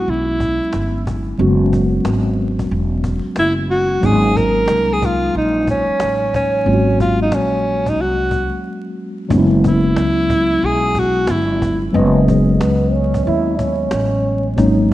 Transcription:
0.00 1.34 F#3 medium
0.00 1.35 G#3 medium
0.00 1.38 B3 medium
0.00 1.35 C#4 medium
0.00 1.36 E4 medium
0.00 0.11 F#4 medium
0.06 0.59 B1 medium
0.06 1.07 E4 medium
0.06 cajon slap medium
0.29 cajon slap soft
0.40 cajon bass medium
0.61 muted upright bass stroke soft
0.61 cajon slap soft
0.73 1.36 G1 medium
0.73 cajon slap loud
0.97 cajon slap soft
1.07 cajon bass medium
1.29 cajon slap soft
1.38 2.02 F#1 loud
1.38 3.99 F#3 medium
1.38 3.99 G#3 medium
1.38 3.99 B3 medium
1.38 4.00 C#4 medium
1.38 4.00 F#4 medium
1.38 cajon slap medium
1.60 cajon slap soft
1.73 cajon bass medium
1.94 cajon slap soft
2.05 2.68 G#1 medium
2.05 cajon slap loud
2.26 cajon slap soft
2.39 cajon slap soft
2.59 cajon bass medium
2.70 3.23 E1 loud
2.70 cajon slap medium
2.93 cajon slap soft
3.04 cajon bass medium
3.24 muted upright bass stroke soft
3.24 cajon slap soft
3.36 4.00 F#1 medium
3.36 3.53 E4 medium
3.36 cajon slap loud
3.59 cajon slap soft
3.69 4.06 F#4 medium
3.69 cajon slap soft
4.01 4.66 G#1 loud
4.01 6.62 F#3 medium
4.01 6.62 G#3 medium
4.01 6.62 A#3 medium
4.01 6.63 C#4 medium
4.01 6.63 D#4 medium
4.01 cajon bass loud
4.05 4.38 G#4 loud
4.23 cajon slap soft
4.37 4.95 A#4 loud
4.37 cajon bass medium
4.57 cajon slap soft
4.68 5.31 C2 medium
4.68 cajon slap loud
4.89 cajon slap soft
4.93 5.07 G#4 medium
5.02 5.37 F4 medium
5.02 cajon bass medium
5.23 cajon slap soft
5.34 5.86 A#1 medium
5.34 5.67 D#4 medium
5.34 cajon slap medium
5.56 cajon slap soft
5.67 6.31 C#4 medium
5.67 cajon bass medium
5.88 muted upright bass stroke soft
5.88 cajon slap soft
6.00 6.64 A1 medium
6.00 cajon slap loud
6.24 cajon slap soft
6.34 6.97 C#4 medium
6.34 cajon bass loud
6.56 cajon slap soft
6.65 7.29 G#1 medium
6.65 9.25 F#3 medium
6.65 9.26 G#3 medium
6.65 9.26 A#3 medium
6.65 9.27 C#4 medium
6.65 6.76 F4 medium
6.65 cajon slap soft
6.74 9.30 F#4 medium
6.87 cajon slap soft
7.00 7.20 F4 medium
7.00 cajon bass medium
7.21 7.36 D#4 medium
7.21 cajon slap soft
7.32 7.98 A#1 medium
7.32 7.91 C#4 medium
7.32 cajon slap loud
7.52 cajon slap soft
7.66 cajon slap soft
7.86 8.03 D#4 medium
7.86 cajon bass medium
7.97 8.50 C2 loud
7.97 cajon slap medium
8.01 8.66 F#4 medium
8.20 cajon slap soft
8.31 cajon bass medium
8.52 muted upright bass stroke soft
8.52 cajon slap soft
9.29 9.93 F#1 loud
9.29 11.89 F#3 medium
9.29 11.90 G#3 medium
9.29 11.90 B3 medium
9.29 11.90 C#4 medium
9.29 9.39 D#4 medium
9.29 cajon bass loud
9.38 11.94 E4 medium
9.51 cajon slap soft
9.64 10.67 E4 medium
9.64 cajon bass medium
9.85 cajon slap soft
9.96 10.59 C#2 medium
9.96 cajon slap loud
10.17 cajon slap soft
10.30 cajon bass loud
10.50 cajon slap soft
10.62 11.25 B1 loud
10.62 11.00 G#4 loud
10.84 cajon slap soft
10.95 cajon bass medium
10.99 11.32 F#4 loud
11.27 11.91 G1 loud
11.27 11.84 E4 medium
11.27 cajon slap loud
11.51 cajon slap soft
11.62 cajon bass loud
11.84 cajon slap soft
11.93 12.57 F#1 loud
11.93 14.53 F#3 medium
11.93 14.53 G#3 medium
11.93 12.28 B3 medium
11.93 14.54 B3 medium
11.93 14.54 C#4 medium
11.93 14.55 D#5 medium
11.93 cajon slap soft
12.16 cajon slap soft
12.26 12.60 G#3 medium
12.26 cajon bass medium
12.50 cajon slap soft
12.59 13.23 C#2 medium
12.59 12.90 B3 medium
12.59 cajon slap loud
12.81 cajon slap soft
12.88 12.94 C4 medium
12.93 13.25 C#4 medium
12.93 cajon slap soft
13.14 cajon bass medium
13.25 13.89 D#2 medium
13.25 13.60 E4 loud
13.25 cajon slap medium
13.48 cajon slap soft
13.58 14.79 C#4 medium
13.58 cajon bass medium
13.79 cajon slap soft
13.91 14.55 A1 medium
13.91 cajon slap loud
14.15 cajon slap soft
14.25 cajon slap soft
14.47 cajon slap soft
14.56 14.94 G#1 loud
14.56 14.94 F#3 medium
14.56 14.94 G#3 medium
14.56 14.94 A#3 medium
14.56 14.94 C#4 medium
14.56 14.94 D#4 medium
14.56 cajon bass loud
14.78 cajon slap soft

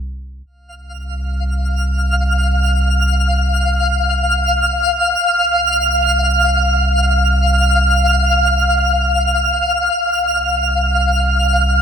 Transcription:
0.00 0.42 C2 medium
0.45 5.16 C2 medium
0.45 9.92 F5 medium
0.45 9.91 F6 medium
5.19 9.89 C2 medium
9.92 11.82 C2 medium
9.92 11.82 F5 medium
9.92 11.82 F6 medium

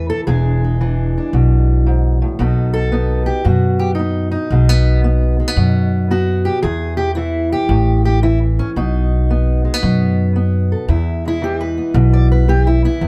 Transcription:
0.00 0.10 E2 medium
0.00 0.25 A2 medium
0.00 0.27 E3 medium
0.10 0.20 A4 medium
0.27 1.17 E1 medium
0.27 1.86 E2 medium
0.27 0.80 E3 soft
0.27 0.63 G#3 soft
0.27 0.80 D4 medium
0.27 2.39 G#4 medium
0.64 2.40 G#3 soft
0.81 2.39 E3 medium
0.81 1.16 D4 medium
1.18 2.38 D4 soft
1.33 2.22 B1 medium
1.33 2.39 B2 medium
1.87 2.21 G#2 medium
2.22 2.39 A2 medium
2.39 3.28 B1 medium
2.39 3.45 B2 medium
2.39 2.92 B3 soft
2.39 2.93 D#4 medium
2.39 2.73 A4 soft
2.74 3.26 A4 loud
2.92 3.99 B3 medium
2.92 3.44 D#4 medium
3.26 3.44 G4 loud
3.45 4.34 F#2 medium
3.45 4.51 B2 medium
3.45 3.94 F#4 medium
3.79 3.90 G4 medium
3.95 4.30 D#4 medium
3.99 4.52 B3 medium
4.31 6.09 D#4 medium
4.50 5.40 B1 medium
4.50 5.56 B2 medium
4.50 4.69 G#3 soft
4.69 5.03 B3 soft
5.04 5.39 B3 medium
5.40 5.48 G#3 soft
5.48 6.09 B3 soft
5.57 6.46 F#2 loud
5.57 6.63 B2 medium
6.11 6.61 B3 medium
6.11 6.64 F#4 medium
6.45 6.62 G4 medium
6.63 7.53 E2 medium
6.63 7.69 E2 medium
6.63 6.97 G#4 loud
6.97 7.15 G4 loud
7.15 8.21 E3 medium
7.15 7.51 E4 medium
7.52 8.04 G4 loud
7.69 8.59 A1 loud
7.69 8.74 A2 medium
8.05 8.23 G4 medium
8.22 8.76 E3 medium
8.22 8.39 E4 medium
8.59 8.70 C#4 medium
8.76 9.66 B1 medium
8.76 9.81 B2 medium
8.76 10.89 D#4 medium
9.30 9.64 B3 medium
9.65 9.74 G#3 soft
9.74 10.35 B3 soft
9.82 10.72 F#2 loud
9.82 10.89 B2 medium
10.36 10.87 B3 medium
10.72 10.87 A4 soft
10.88 11.78 E2 medium
10.88 13.00 E2 medium
10.88 11.27 E4 soft
11.25 13.08 G#3 soft
11.25 11.44 E4 loud
11.42 12.48 E3 medium
11.42 11.61 G4 medium
11.61 12.13 B4 medium
11.78 12.48 B3 soft
11.94 12.84 B1 loud
11.94 12.48 B2 medium
12.13 12.31 D5 medium
12.32 12.49 B4 medium
12.48 13.08 E3 medium
12.48 12.66 G4 loud
12.67 12.84 E4 medium
12.85 13.01 B3 medium
12.85 13.08 E4 medium
13.01 13.08 E2 medium
13.01 13.08 B3 medium

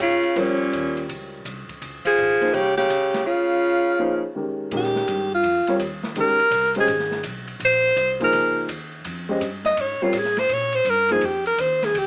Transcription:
0.00 0.22 G#2 medium
0.00 0.39 C#3 medium
0.00 0.42 F4 medium
0.00 hi-hat pedal soft
0.00 ride medium
0.23 muted upright bass stroke soft
0.23 ride soft
0.36 0.72 F2 medium
0.36 1.09 A#2 medium
0.36 1.37 G3 medium
0.36 1.38 F4 medium
0.36 1.38 A#4 medium
0.36 1.37 C5 medium
0.36 1.38 C#5 medium
0.36 ride medium
0.40 1.11 C#4 medium
0.73 1.08 D#2 medium
0.73 hi-hat pedal soft
0.73 ride medium
0.97 ride soft
1.09 1.44 C#2 medium
1.09 ride medium
1.45 1.67 C2 medium
1.45 hi-hat pedal soft
1.45 ride medium
1.69 muted upright bass stroke soft
1.69 kick soft
1.69 ride soft
1.82 2.03 C#2 medium
1.82 ride medium
2.05 2.56 F3 medium
2.05 2.56 G#4 medium
2.05 muted upright bass stroke soft
2.05 kick medium
2.05 ride medium
2.17 2.40 G#1 medium
2.17 hi-hat pedal soft
2.41 2.52 F3 medium
2.41 2.52 A#3 medium
2.41 2.52 D#4 medium
2.41 2.53 G#4 medium
2.41 2.53 C5 medium
2.41 muted upright bass stroke soft
2.41 ride soft
2.53 2.89 C2 medium
2.53 2.77 C#3 medium
2.53 2.77 G4 medium
2.53 ride soft
2.77 3.23 C#3 medium
2.77 3.23 G4 medium
2.77 snare soft
2.90 3.25 C#2 medium
2.90 hi-hat pedal soft
2.90 ride medium
3.14 snare soft
3.14 ride soft
3.26 4.30 C#3 medium
3.26 4.31 F4 medium
3.99 4.20 F3 medium
3.99 4.20 A#3 medium
3.99 4.20 D#4 medium
3.99 4.21 G#4 medium
3.99 4.21 C5 medium
4.35 4.70 D#3 soft
4.35 4.71 G#3 soft
4.35 4.71 C#4 soft
4.35 4.72 G4 soft
4.35 4.72 A#4 medium
4.71 5.06 A#2 medium
4.71 5.27 D#3 medium
4.71 5.27 G#3 medium
4.71 5.27 C#4 medium
4.71 5.27 G4 medium
4.71 5.27 A#4 medium
4.71 ride medium
4.77 5.30 G4 medium
4.83 snare soft
4.96 snare soft
5.07 5.42 G2 medium
5.07 hi-hat pedal medium
5.07 ride medium
5.34 5.78 F4 medium
5.43 5.65 F2 medium
5.43 ride medium
5.67 5.79 G3 medium
5.67 5.79 C4 medium
5.67 5.79 F4 medium
5.67 5.79 A#4 medium
5.67 5.79 C#5 medium
5.67 muted upright bass stroke soft
5.67 ride soft
5.79 6.14 D#2 medium
5.79 hi-hat pedal medium
5.79 ride medium
6.03 snare soft
6.15 6.37 C#2 medium
6.15 6.37 D#3 medium
6.15 6.37 G#3 medium
6.15 6.38 C#4 medium
6.15 6.38 G4 medium
6.15 6.38 A#4 medium
6.15 ride medium
6.20 6.74 A#4 medium
6.39 muted upright bass stroke soft
6.39 ride soft
6.51 6.86 C2 medium
6.51 hi-hat pedal medium
6.51 ride medium
6.75 6.87 G#3 medium
6.75 6.87 C#4 medium
6.75 6.87 G4 medium
6.75 6.88 C5 medium
6.75 6.88 D#5 medium
6.75 ride soft
6.80 7.23 G#4 medium
6.87 7.23 G#1 medium
6.87 ride medium
6.99 snare soft
7.11 snare soft
7.23 7.59 B1 medium
7.23 hi-hat pedal medium
7.23 ride medium
7.47 ride soft
7.60 7.95 A#1 medium
7.60 ride medium
7.65 8.19 C5 loud
7.96 8.32 C2 medium
7.96 hi-hat pedal medium
7.96 ride medium
8.20 8.66 F3 medium
8.20 8.66 A#3 medium
8.20 8.67 D#4 medium
8.20 8.67 G#4 medium
8.20 8.67 C5 medium
8.20 ride soft
8.24 8.68 A#4 medium
8.33 8.67 C#2 medium
8.33 ride medium
8.68 9.03 D#2 medium
8.68 hi-hat pedal medium
8.68 ride medium
9.05 9.40 F2 medium
9.05 ride medium
9.29 9.40 G#3 medium
9.29 9.40 C#4 medium
9.29 9.41 G4 medium
9.29 9.41 C5 medium
9.29 9.41 D#5 medium
9.40 9.76 G2 medium
9.40 hi-hat pedal medium
9.40 ride medium
9.65 9.82 D#5 medium
9.65 snare soft
9.65 ride soft
9.77 9.99 G#2 medium
9.77 10.05 C#5 medium
9.77 ride medium
10.01 10.13 G3 medium
10.01 10.13 C4 medium
10.01 10.13 F4 medium
10.01 10.20 F4 medium
10.01 10.14 A#4 medium
10.01 10.14 C#5 medium
10.01 muted upright bass stroke soft
10.13 10.48 A2 medium
10.13 hi-hat pedal medium
10.13 ride medium
10.18 10.41 G#4 medium
10.25 snare soft
10.37 10.55 C5 medium
10.37 snare soft
10.37 ride soft
10.49 10.84 A#2 medium
10.49 ride medium
10.53 10.77 C#5 medium
10.73 10.91 C5 medium
10.73 ride soft
10.85 11.20 G2 medium
10.85 hi-hat pedal medium
10.85 ride medium
10.89 11.13 A#4 medium
11.09 11.21 F3 medium
11.09 11.21 A#3 medium
11.09 11.22 D#4 medium
11.09 11.22 G#4 medium
11.09 11.27 G#4 medium
11.09 11.22 C5 medium
11.09 ride soft
11.21 11.57 F2 medium
11.21 ride medium
11.26 11.46 G4 medium
11.46 11.62 A#4 medium
11.46 ride soft
11.58 11.93 D#2 medium
11.58 11.86 C5 medium
11.58 hi-hat pedal medium
11.58 ride medium
11.82 12.00 G#4 medium
11.82 snare soft
11.82 ride soft
11.94 12.07 C#2 medium
11.94 ride medium
11.99 12.07 G4 medium

